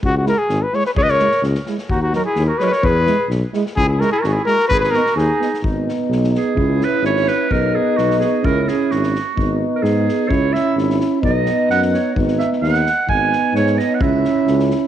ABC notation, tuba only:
X:1
M:2/4
L:1/8
Q:1/4=129
K:G#m
V:1 name="Tuba" clef=bass
C,,2 G,,, z | C,,2 C,, z | D,,2 D,, z | E,,2 B,,, z |
C,,2 G,,, z | G,,,2 D,, z | G,,,2 B,,,2 | C,,2 G,,,2 |
B,,,2 B,,,2 | C,,2 G,,,2 | G,,,2 G,,2 | C,,2 G,,,2 |
B,,,2 F,,2 | G,,,2 D,,2 | G,,,2 G,,2 | C,,2 C,,2 |]